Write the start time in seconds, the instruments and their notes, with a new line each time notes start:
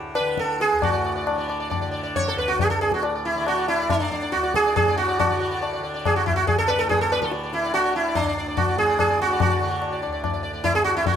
Already playing: tanpura D2 A2 D3
0.15 sitar B4, tabla na
0.20 tanpura D3
0.37 sitar A4, tabla ke
0.60 sitar G#4, tabla te
0.72 tanpura D2
0.82 tanpura A2, sitar F#4 D5, tabla na, tabla ge
0.92 sitar D5
1.04 sitar D5
1.15 sitar D5
1.26 sitar D5, tabla na
1.31 tanpura D3
1.38 sitar D5
1.48 sitar D5, tabla na
1.60 sitar D5
1.70 sitar D5, tabla na, tabla ge
1.81 tanpura D3, sitar D5
1.91 sitar D5
2.03 sitar D5
2.16 sitar C#5, tabla tin, tabla ge
2.28 sitar A4
2.34 tanpura D2
2.38 sitar B4
2.48 sitar F#4
2.59 sitar G#4, tabla tin, tabla ge
2.70 sitar A4
2.81 tanpura A2, sitar G#4, tabla na
2.92 sitar F#4, tabla ke
3.03 sitar D5, tabla na
3.15 sitar D5
3.25 sitar E4
3.34 tanpura D3, sitar D5
3.47 sitar F#4, tabla na
3.57 sitar D5
3.68 sitar E4, tabla na
3.80 tanpura D3, sitar D5
3.89 sitar D4, tabla na, tabla ge
4.00 sitar D5
4.11 sitar D5, tabla ge
4.22 sitar D5
4.32 tanpura D2, sitar F#4, tabla te
4.43 sitar D5, tabla te
4.54 sitar G#4, tabla ke
4.64 sitar D5, tabla te
4.76 sitar G#4, tabla na, tabla ge
4.82 tanpura A2
4.88 sitar D5
4.98 sitar F#4, tabla te
5.08 sitar D5
5.19 sitar F#4, tabla na, tabla ge
5.29 tanpura D3, sitar D5
5.40 sitar D5
5.51 sitar D5
5.61 sitar D5, tabla na
5.73 sitar D5
5.79 tanpura D3
5.83 sitar D5
5.94 sitar D5
6.05 sitar G#4, tabla na, tabla ge
6.16 sitar F#4
6.26 tanpura D2, sitar E4, tabla ge
6.36 sitar F#4
6.47 sitar G#4, tabla tin, tabla ge
6.58 sitar A4
6.68 sitar B4, tabla na
6.73 tanpura A2
6.79 sitar A4
6.89 sitar G#4, tabla tin, tabla ge
7.01 sitar A4
7.12 sitar B4, tabla na
7.21 tanpura D3, sitar A4, tabla ke
7.32 sitar D5, tabla te
7.43 sitar D5
7.53 sitar E4, tabla te
7.64 sitar D5
7.71 tanpura D3, sitar F#4, tabla na
7.85 sitar D5
7.95 sitar E4, tabla na
8.07 sitar D5
8.15 tanpura D2, sitar D4, tabla na, tabla ge
8.26 sitar D5
8.38 sitar D5
8.48 sitar D5
8.57 sitar F#4, tabla na, tabla ge
8.67 tanpura A2, sitar D5
8.78 sitar G#4, tabla ge
8.89 sitar D5
8.99 sitar G#4, tabla na, tabla ge
9.10 tanpura D3, sitar D5
9.20 sitar F#4, tabla te
9.31 sitar D5
9.40 sitar F#4, tabla na, tabla ge
9.50 sitar D5
9.60 tanpura D3, sitar D5
9.70 sitar D5
9.82 tabla na
9.92 sitar D5
10.02 tanpura D2, sitar D5, tabla na
10.12 sitar D5
10.23 sitar D5, tabla na, tabla ge
10.34 sitar D5
10.43 sitar D5
10.53 tanpura A2, sitar D5
10.64 sitar E4, tabla tin, tabla ge
10.75 sitar G#4
10.84 sitar F#4, tabla na
10.97 tanpura D3, sitar E4
11.06 sitar F#4, tabla tin, tabla ge